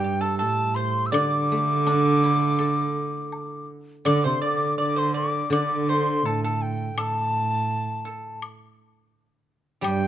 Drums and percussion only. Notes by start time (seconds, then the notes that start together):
1.14 high woodblock
1.87 high woodblock, low woodblock
2.59 high woodblock
3.32 low woodblock
4.06 high woodblock
5.53 high woodblock
6.98 high woodblock
8.42 high woodblock
9.84 high woodblock